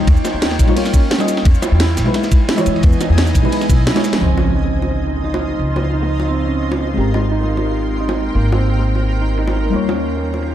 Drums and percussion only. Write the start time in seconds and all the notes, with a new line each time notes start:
0.07 kick, closed hi-hat, ride
0.16 ride, shaker
0.24 snare, closed hi-hat, ride, high bongo, shaker
0.42 snare, closed hi-hat, ride
0.51 snare, ride
0.59 kick, open hi-hat, shaker
0.67 ride, high bongo
0.77 closed hi-hat, open hi-hat, ride
0.85 snare, shaker
0.93 kick, closed hi-hat, ride, shaker
1.11 snare, closed hi-hat, ride
1.20 snare, high bongo, shaker
1.28 snare, open hi-hat, ride, shaker
1.37 snare
1.45 kick, closed hi-hat, ride
1.54 shaker
1.62 snare, closed hi-hat, ride, high bongo, shaker
1.80 snare, closed hi-hat, ride
1.89 snare
1.97 snare, open hi-hat, ride, shaker
2.06 high bongo
2.14 snare, closed hi-hat, ride
2.23 snare, ride, shaker
2.31 kick, closed hi-hat, ride, shaker
2.49 snare, closed hi-hat, ride
2.58 ride, high bongo, shaker
2.66 open hi-hat, shaker
2.76 ride
2.83 kick, closed hi-hat, ride
2.92 shaker
3.01 snare, closed hi-hat, ride, high bongo, shaker
3.18 snare, closed hi-hat, ride
3.27 snare, shaker
3.34 kick, open hi-hat, ride, shaker
3.45 high bongo
3.52 closed hi-hat, open hi-hat, ride
3.61 snare, shaker
3.69 kick, closed hi-hat, shaker
3.87 snare, closed hi-hat, ride
3.96 snare, high bongo, shaker
4.04 snare, open hi-hat, ride, shaker
4.13 snare, ride
4.21 ride
4.38 ride, high bongo
4.55 ride
4.64 snare
4.73 ride
4.82 high bongo
4.91 ride
5.07 ride
5.17 snare
5.25 ride
5.34 high bongo
5.42 ride
5.52 snare
5.59 ride
5.68 ride
5.76 snare, ride, high bongo
5.93 ride
6.02 snare, ride
6.20 ride, high bongo
6.28 open hi-hat
6.46 ride
6.63 ride
6.72 high bongo
6.80 snare, ride
6.89 snare
6.97 ride
7.14 ride, high bongo
7.31 ride
7.41 snare
7.49 ride
7.57 high bongo
7.67 ride
7.83 ride
7.92 snare
8.01 ride
8.09 high bongo
8.18 ride
8.27 snare
8.35 ride
8.44 ride
8.52 ride, high bongo
8.69 ride
8.79 snare
8.86 ride
8.95 high bongo
9.05 open hi-hat
9.21 ride
9.37 ride
9.47 high bongo
9.56 snare, ride
9.65 snare
9.74 ride
9.89 ride, high bongo
10.08 ride
10.17 snare
10.25 ride
10.34 high bongo
10.42 ride